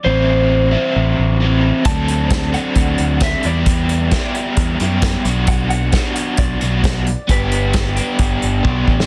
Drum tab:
HH |----------------|x-x-x-x-x-x-x-x-|x-x-x-x-x-x-x-x-|x-x-x-x-x-x-x-x-|
SD |----------------|----o-------o---|----o-------o---|----o-------o---|
BD |----------------|o---o---o---o---|o---o---o---o---|o---o---o---o---|

HH |x-x-x-x-x-x-----|
SD |----o----------o|
BD |o---o---o---o-o-|